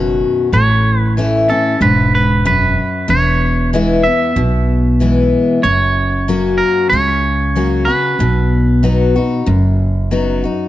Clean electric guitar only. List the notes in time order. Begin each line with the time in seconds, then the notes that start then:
0.54 C#5
0.99 B4
1.50 A4
1.82 B4
2.15 B4
2.47 B4
3.10 C#5
4.03 E5
5.63 C#5
6.58 A#4
6.90 C#5
7.85 B4